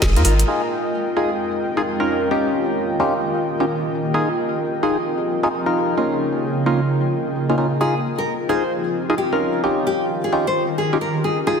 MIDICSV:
0, 0, Header, 1, 7, 480
1, 0, Start_track
1, 0, Key_signature, -4, "minor"
1, 0, Tempo, 458015
1, 502, Time_signature, 4, 2, 24, 8
1, 12157, End_track
2, 0, Start_track
2, 0, Title_t, "Nylon-string guitar"
2, 0, Program_c, 0, 24
2, 23, Note_on_c, 0, 68, 88
2, 167, Note_off_c, 0, 68, 0
2, 263, Note_on_c, 0, 65, 88
2, 407, Note_off_c, 0, 65, 0
2, 8183, Note_on_c, 0, 68, 87
2, 8372, Note_off_c, 0, 68, 0
2, 8577, Note_on_c, 0, 70, 84
2, 8726, Note_off_c, 0, 70, 0
2, 8902, Note_on_c, 0, 72, 87
2, 9132, Note_off_c, 0, 72, 0
2, 9619, Note_on_c, 0, 67, 85
2, 9810, Note_off_c, 0, 67, 0
2, 10340, Note_on_c, 0, 67, 87
2, 10530, Note_off_c, 0, 67, 0
2, 10731, Note_on_c, 0, 68, 82
2, 10815, Note_off_c, 0, 68, 0
2, 10975, Note_on_c, 0, 72, 89
2, 11125, Note_off_c, 0, 72, 0
2, 11298, Note_on_c, 0, 68, 82
2, 11445, Note_off_c, 0, 68, 0
2, 11540, Note_on_c, 0, 70, 81
2, 11686, Note_off_c, 0, 70, 0
2, 11781, Note_on_c, 0, 68, 83
2, 11927, Note_off_c, 0, 68, 0
2, 12019, Note_on_c, 0, 68, 94
2, 12157, Note_off_c, 0, 68, 0
2, 12157, End_track
3, 0, Start_track
3, 0, Title_t, "Analog synth pad"
3, 0, Program_c, 1, 89
3, 0, Note_on_c, 1, 65, 78
3, 0, Note_on_c, 1, 70, 85
3, 0, Note_on_c, 1, 75, 79
3, 0, Note_on_c, 1, 79, 82
3, 6262, Note_on_c, 1, 49, 84
3, 8171, Note_off_c, 1, 65, 0
3, 8182, Note_off_c, 1, 49, 0
3, 8183, Note_on_c, 1, 65, 76
3, 12021, Note_off_c, 1, 70, 0
3, 12023, Note_off_c, 1, 75, 0
3, 12024, Note_off_c, 1, 79, 0
3, 12157, Note_off_c, 1, 65, 0
3, 12157, End_track
4, 0, Start_track
4, 0, Title_t, "Synth stab"
4, 0, Program_c, 2, 62
4, 175, Note_on_c, 2, 63, 94
4, 175, Note_on_c, 2, 65, 83
4, 175, Note_on_c, 2, 70, 103
4, 241, Note_off_c, 2, 63, 0
4, 241, Note_off_c, 2, 65, 0
4, 241, Note_off_c, 2, 70, 0
4, 262, Note_on_c, 2, 63, 85
4, 262, Note_on_c, 2, 70, 92
4, 263, Note_on_c, 2, 65, 75
4, 355, Note_off_c, 2, 63, 0
4, 355, Note_off_c, 2, 65, 0
4, 355, Note_off_c, 2, 70, 0
4, 502, Note_on_c, 2, 63, 87
4, 502, Note_on_c, 2, 65, 79
4, 502, Note_on_c, 2, 68, 95
4, 650, Note_off_c, 2, 63, 0
4, 650, Note_off_c, 2, 65, 0
4, 650, Note_off_c, 2, 68, 0
4, 1222, Note_on_c, 2, 63, 92
4, 1222, Note_on_c, 2, 65, 84
4, 1222, Note_on_c, 2, 68, 101
4, 1370, Note_off_c, 2, 63, 0
4, 1370, Note_off_c, 2, 65, 0
4, 1370, Note_off_c, 2, 68, 0
4, 1855, Note_on_c, 2, 65, 84
4, 1855, Note_on_c, 2, 68, 104
4, 1856, Note_on_c, 2, 63, 96
4, 1908, Note_off_c, 2, 63, 0
4, 1908, Note_off_c, 2, 65, 0
4, 1908, Note_off_c, 2, 68, 0
4, 2096, Note_on_c, 2, 61, 76
4, 2096, Note_on_c, 2, 63, 68
4, 2096, Note_on_c, 2, 65, 68
4, 2096, Note_on_c, 2, 70, 83
4, 2401, Note_off_c, 2, 61, 0
4, 2401, Note_off_c, 2, 63, 0
4, 2401, Note_off_c, 2, 65, 0
4, 2401, Note_off_c, 2, 70, 0
4, 2422, Note_on_c, 2, 61, 72
4, 2422, Note_on_c, 2, 63, 64
4, 2422, Note_on_c, 2, 65, 66
4, 2422, Note_on_c, 2, 67, 81
4, 3121, Note_off_c, 2, 61, 0
4, 3121, Note_off_c, 2, 63, 0
4, 3121, Note_off_c, 2, 65, 0
4, 3121, Note_off_c, 2, 67, 0
4, 3141, Note_on_c, 2, 61, 93
4, 3141, Note_on_c, 2, 67, 100
4, 3142, Note_on_c, 2, 63, 84
4, 3142, Note_on_c, 2, 65, 84
4, 3290, Note_off_c, 2, 61, 0
4, 3290, Note_off_c, 2, 63, 0
4, 3290, Note_off_c, 2, 65, 0
4, 3290, Note_off_c, 2, 67, 0
4, 3776, Note_on_c, 2, 61, 70
4, 3776, Note_on_c, 2, 63, 65
4, 3776, Note_on_c, 2, 65, 65
4, 3776, Note_on_c, 2, 67, 77
4, 3828, Note_off_c, 2, 61, 0
4, 3828, Note_off_c, 2, 63, 0
4, 3828, Note_off_c, 2, 65, 0
4, 3828, Note_off_c, 2, 67, 0
4, 4342, Note_on_c, 2, 63, 90
4, 4342, Note_on_c, 2, 65, 80
4, 4342, Note_on_c, 2, 68, 97
4, 4490, Note_off_c, 2, 63, 0
4, 4490, Note_off_c, 2, 65, 0
4, 4490, Note_off_c, 2, 68, 0
4, 5061, Note_on_c, 2, 63, 93
4, 5061, Note_on_c, 2, 65, 84
4, 5061, Note_on_c, 2, 68, 102
4, 5210, Note_off_c, 2, 63, 0
4, 5210, Note_off_c, 2, 65, 0
4, 5210, Note_off_c, 2, 68, 0
4, 5694, Note_on_c, 2, 63, 92
4, 5695, Note_on_c, 2, 65, 86
4, 5695, Note_on_c, 2, 68, 106
4, 5747, Note_off_c, 2, 63, 0
4, 5747, Note_off_c, 2, 65, 0
4, 5747, Note_off_c, 2, 68, 0
4, 5935, Note_on_c, 2, 63, 76
4, 5935, Note_on_c, 2, 65, 67
4, 5935, Note_on_c, 2, 70, 82
4, 6241, Note_off_c, 2, 63, 0
4, 6241, Note_off_c, 2, 65, 0
4, 6241, Note_off_c, 2, 70, 0
4, 6262, Note_on_c, 2, 58, 70
4, 6262, Note_on_c, 2, 61, 66
4, 6262, Note_on_c, 2, 63, 66
4, 6263, Note_on_c, 2, 65, 81
4, 6961, Note_off_c, 2, 58, 0
4, 6961, Note_off_c, 2, 61, 0
4, 6961, Note_off_c, 2, 63, 0
4, 6962, Note_off_c, 2, 65, 0
4, 6982, Note_on_c, 2, 58, 90
4, 6982, Note_on_c, 2, 61, 84
4, 6982, Note_on_c, 2, 65, 102
4, 6983, Note_on_c, 2, 63, 83
4, 7130, Note_off_c, 2, 61, 0
4, 7131, Note_off_c, 2, 58, 0
4, 7131, Note_off_c, 2, 63, 0
4, 7131, Note_off_c, 2, 65, 0
4, 7855, Note_on_c, 2, 61, 82
4, 7855, Note_on_c, 2, 63, 82
4, 7856, Note_on_c, 2, 58, 90
4, 7856, Note_on_c, 2, 65, 99
4, 7921, Note_off_c, 2, 58, 0
4, 7921, Note_off_c, 2, 61, 0
4, 7921, Note_off_c, 2, 63, 0
4, 7922, Note_off_c, 2, 65, 0
4, 7941, Note_on_c, 2, 58, 79
4, 7941, Note_on_c, 2, 61, 75
4, 7942, Note_on_c, 2, 63, 73
4, 7942, Note_on_c, 2, 65, 89
4, 8034, Note_off_c, 2, 58, 0
4, 8034, Note_off_c, 2, 61, 0
4, 8035, Note_off_c, 2, 63, 0
4, 8035, Note_off_c, 2, 65, 0
4, 8181, Note_on_c, 2, 63, 89
4, 8181, Note_on_c, 2, 65, 80
4, 8181, Note_on_c, 2, 68, 98
4, 8330, Note_off_c, 2, 63, 0
4, 8330, Note_off_c, 2, 65, 0
4, 8330, Note_off_c, 2, 68, 0
4, 8901, Note_on_c, 2, 63, 93
4, 8901, Note_on_c, 2, 65, 84
4, 8901, Note_on_c, 2, 68, 105
4, 9050, Note_off_c, 2, 63, 0
4, 9050, Note_off_c, 2, 65, 0
4, 9050, Note_off_c, 2, 68, 0
4, 9534, Note_on_c, 2, 63, 95
4, 9534, Note_on_c, 2, 65, 86
4, 9534, Note_on_c, 2, 68, 103
4, 9587, Note_off_c, 2, 63, 0
4, 9587, Note_off_c, 2, 65, 0
4, 9587, Note_off_c, 2, 68, 0
4, 9774, Note_on_c, 2, 61, 76
4, 9774, Note_on_c, 2, 63, 67
4, 9774, Note_on_c, 2, 65, 69
4, 9774, Note_on_c, 2, 70, 81
4, 10081, Note_off_c, 2, 61, 0
4, 10081, Note_off_c, 2, 63, 0
4, 10081, Note_off_c, 2, 65, 0
4, 10081, Note_off_c, 2, 70, 0
4, 10100, Note_on_c, 2, 61, 73
4, 10100, Note_on_c, 2, 63, 67
4, 10100, Note_on_c, 2, 65, 66
4, 10100, Note_on_c, 2, 67, 81
4, 10800, Note_off_c, 2, 61, 0
4, 10800, Note_off_c, 2, 63, 0
4, 10800, Note_off_c, 2, 65, 0
4, 10800, Note_off_c, 2, 67, 0
4, 10821, Note_on_c, 2, 61, 95
4, 10821, Note_on_c, 2, 63, 86
4, 10821, Note_on_c, 2, 65, 85
4, 10821, Note_on_c, 2, 67, 103
4, 10970, Note_off_c, 2, 61, 0
4, 10970, Note_off_c, 2, 63, 0
4, 10970, Note_off_c, 2, 65, 0
4, 10970, Note_off_c, 2, 67, 0
4, 11454, Note_on_c, 2, 61, 73
4, 11454, Note_on_c, 2, 65, 65
4, 11455, Note_on_c, 2, 63, 66
4, 11455, Note_on_c, 2, 67, 78
4, 11507, Note_off_c, 2, 61, 0
4, 11507, Note_off_c, 2, 63, 0
4, 11507, Note_off_c, 2, 65, 0
4, 11507, Note_off_c, 2, 67, 0
4, 12022, Note_on_c, 2, 63, 88
4, 12022, Note_on_c, 2, 65, 80
4, 12022, Note_on_c, 2, 68, 97
4, 12157, Note_off_c, 2, 63, 0
4, 12157, Note_off_c, 2, 65, 0
4, 12157, Note_off_c, 2, 68, 0
4, 12157, End_track
5, 0, Start_track
5, 0, Title_t, "Ambient pad"
5, 0, Program_c, 3, 92
5, 0, Note_on_c, 3, 56, 79
5, 0, Note_on_c, 3, 58, 74
5, 0, Note_on_c, 3, 63, 74
5, 0, Note_on_c, 3, 65, 90
5, 463, Note_off_c, 3, 63, 0
5, 481, Note_off_c, 3, 56, 0
5, 481, Note_off_c, 3, 58, 0
5, 481, Note_off_c, 3, 65, 0
5, 499, Note_on_c, 3, 63, 72
5, 500, Note_on_c, 3, 41, 77
5, 500, Note_on_c, 3, 56, 71
5, 501, Note_on_c, 3, 60, 72
5, 501, Note_on_c, 3, 67, 85
5, 2164, Note_off_c, 3, 41, 0
5, 2164, Note_off_c, 3, 56, 0
5, 2164, Note_off_c, 3, 63, 0
5, 2165, Note_off_c, 3, 60, 0
5, 2165, Note_off_c, 3, 67, 0
5, 2181, Note_on_c, 3, 51, 78
5, 2181, Note_on_c, 3, 65, 73
5, 2182, Note_on_c, 3, 58, 72
5, 2182, Note_on_c, 3, 61, 73
5, 2182, Note_on_c, 3, 67, 86
5, 4320, Note_off_c, 3, 51, 0
5, 4320, Note_off_c, 3, 58, 0
5, 4320, Note_off_c, 3, 61, 0
5, 4320, Note_off_c, 3, 65, 0
5, 4342, Note_on_c, 3, 68, 85
5, 4343, Note_on_c, 3, 60, 72
5, 4343, Note_on_c, 3, 63, 71
5, 4344, Note_on_c, 3, 53, 78
5, 6221, Note_off_c, 3, 67, 0
5, 6243, Note_off_c, 3, 60, 0
5, 6244, Note_off_c, 3, 53, 0
5, 6263, Note_on_c, 3, 58, 72
5, 6263, Note_on_c, 3, 65, 72
5, 6265, Note_on_c, 3, 49, 79
5, 8144, Note_off_c, 3, 63, 0
5, 8144, Note_off_c, 3, 68, 0
5, 8163, Note_off_c, 3, 58, 0
5, 8163, Note_off_c, 3, 65, 0
5, 8164, Note_off_c, 3, 49, 0
5, 8180, Note_on_c, 3, 53, 78
5, 8180, Note_on_c, 3, 60, 71
5, 8180, Note_on_c, 3, 63, 70
5, 8180, Note_on_c, 3, 67, 69
5, 8181, Note_on_c, 3, 68, 87
5, 9844, Note_off_c, 3, 53, 0
5, 9844, Note_off_c, 3, 60, 0
5, 9844, Note_off_c, 3, 63, 0
5, 9845, Note_off_c, 3, 68, 0
5, 9859, Note_on_c, 3, 65, 72
5, 9860, Note_on_c, 3, 61, 72
5, 9860, Note_on_c, 3, 70, 88
5, 9861, Note_on_c, 3, 51, 81
5, 11999, Note_off_c, 3, 61, 0
5, 11999, Note_off_c, 3, 65, 0
5, 11999, Note_off_c, 3, 70, 0
5, 12000, Note_off_c, 3, 51, 0
5, 12157, Note_off_c, 3, 67, 0
5, 12157, End_track
6, 0, Start_track
6, 0, Title_t, "Sub bass"
6, 0, Program_c, 4, 38
6, 22, Note_on_c, 4, 32, 89
6, 174, Note_on_c, 4, 41, 96
6, 190, Note_off_c, 4, 32, 0
6, 241, Note_off_c, 4, 41, 0
6, 261, Note_on_c, 4, 32, 88
6, 461, Note_off_c, 4, 32, 0
6, 12157, End_track
7, 0, Start_track
7, 0, Title_t, "Drums"
7, 20, Note_on_c, 9, 38, 115
7, 22, Note_on_c, 9, 36, 112
7, 125, Note_off_c, 9, 38, 0
7, 126, Note_off_c, 9, 36, 0
7, 173, Note_on_c, 9, 42, 53
7, 260, Note_on_c, 9, 46, 110
7, 277, Note_off_c, 9, 42, 0
7, 364, Note_off_c, 9, 46, 0
7, 414, Note_on_c, 9, 42, 68
7, 518, Note_off_c, 9, 42, 0
7, 12157, End_track
0, 0, End_of_file